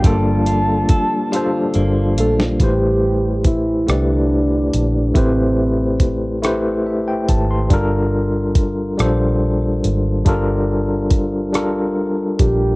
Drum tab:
HH |x-x-x-x-x-x-|x---x-x---x-|x---x-x---x-|x---x-x---x-|
SD |-----------o|------r-----|------r-----|------r-----|
BD |o---o-------|o---o-------|o---o-----o-|o---o-------|

HH |x---x-x---x-|
SD |------r-----|
BD |o---o-----o-|